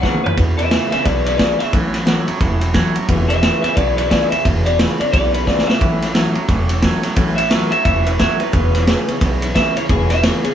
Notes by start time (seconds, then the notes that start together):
0.02 E2 C#3 E3 B3 C#4 G#4 C#5 F#5, kick, snare
0.14 mid tom
0.23 E2 C#3 C#4 G#4 B4, muted upright bass stroke, floor tom
0.36 E2 B2 E3 B3 C#4 G#4, kick, ride
0.57 B3 C#4 G#4 B4 E5, ride
0.70 E2 C#3 E3 B3 C#4 G#4 B4 E5, snare, ride
0.91 E2 C#3 B3 C#4 G#4 B4 E5, muted upright bass stroke, snare, ride
1.03 B1 E2 B2 E3 B3 C#4 G#4 B4 D5, kick, snare, ride
1.26 B3 C#4 G#4 B4 D5, ride
1.37 E2 C#3 E3 B3 C#4 G#4 B4 D5, kick, snare, ride
1.59 E2 C#3 B3 C#4 G#4 E5, muted upright bass stroke, snare, ride
1.71 A1 A2 E3 F#3 A3 C#4 F#4, kick, ride
1.93 F#3 A3 C#4 F#4, snare, ride
2.05 A2 E3 F#3 A3 C#4 F#4, snare, ride
2.25 A2 F#3 A3 C#4 F#4, muted upright bass stroke, ride
2.38 E1 A2 E3 F#3 A3 C#4 F#4, kick, snare, ride
2.60 F#3 A3 C#4 F#4, ride
2.74 A2 E3 F#3 A3 C#4 F#4, kick, snare, ride
2.94 A2 F#3 A3 C#4 F#4, muted upright bass stroke, ride
3.08 E1 E2 B2 E3 G#3 B3 C#4 G#4, kick, ride
3.28 B3 C#4 G#4 B4 E5, ride
3.42 E2 C#3 E3 G#3 B3 C#4 G#4 B4 E5, snare, ride
3.62 E2 C#3 B3 C#4 G#4 B4 E5, muted upright bass stroke, snare, ride
3.75 B1 E2 B2 G#3 B3 C#4 B4 D5, kick, ride
3.79 G#4
3.97 B3 C#4 G#4 B4 D5, ride
4.09 E2 C#3 E3 G#3 B3 C#4 B4 D5, kick, snare, ride
4.13 G#4
4.30 E2 C#3 C#4 G#4 E5, muted upright bass stroke, ride
4.35 B3
4.45 E1 E2 B2 E3 G#3 B3 C#4 G#4, kick, ride
4.65 B3 C#4 G#4 D5, ride
4.79 E2 C#3 E3 G#3 B3 C#4 G#4 B4, snare, ride
5.00 E2 C#3 C#4 G#4 D5, muted upright bass stroke, ride
5.12 B1 E2 B2 G#3 B3 C#4 G#4 D5, kick, snare, ride
5.33 B3 C#4 G#4 B4, ride
5.47 E2 C#3 E3 G#3 B3 C#4 G#4 D5, kick, snare
5.58 snare
5.67 E2 C#3 C#4 G#4 E5, muted upright bass stroke, snare
5.71 B3
5.80 A1 A2 E3 F#3 A3 C#4 A4, kick, ride
6.02 F#3 A3 C#4 A4, snare, ride
6.14 A2 E3 F#3 A3 C#4 A4, snare, ride
6.34 A2 F#3 A3 C#4 A4, muted upright bass stroke, ride
6.39 F#3
6.48 E1 A2 E3 F#3 A3 C#4, kick, snare, ride
6.53 A4
6.69 A3 C#4 A4, ride
6.73 F#3
6.82 A2 E3 F#3 A3 C#4 A4, kick, snare, ride
7.03 A2 F#3 A3 C#4 A4, muted upright bass stroke, snare, ride
7.16 A1 A2 E3 F#3 A3 C#4 A4, kick, ride
7.36 F#3 A3 C#4 A4 E5, ride
7.50 A2 E3 F#3 A3 C#4 A4 B4, snare, ride
7.71 A2 F#3 A3 C#4 A4 E5, muted upright bass stroke, ride
7.85 E1 A2 E3 F#3 A3 C#4 A4 E5, kick, ride
8.05 F#3 A3 C#4 A4 B4, ride
8.19 A2 E3 F#3 A3 C#4 A4 E5, kick, snare, ride
8.39 A2 F#3 A3 C#4 A4 B4, muted upright bass stroke, ride
8.52 E1 E2 B2 E3 B3 C#4 G#4, kick, ride
8.73 B3 C#4 G#4, snare, ride
8.87 E2 C#3 E3 B3 C#4 G#4, snare, ride
9.08 E2 C#3 B3 C#4 G#4, muted upright bass stroke, ride
9.21 B1 E2 B2 E3 B3 C#4 G#4, kick, snare, ride
9.41 B3 C#4 G#4, ride
9.55 E2 C#3 E3 B3 C#4 G#4 E5, kick, snare, ride
9.76 E2 C#3 C#4 G#4 C#5, muted upright bass stroke, ride
9.80 B3
9.89 E1 E2 B2 E3 B3 C#4 G#4, kick, ride
10.09 B3 C#4 G#4 E5, snare, ride
10.22 E2 C#3 E3 B3 C#4 G#4 C#5, snare, ride
10.42 E2 C#3 B3 C#4 G#4, muted upright bass stroke, ride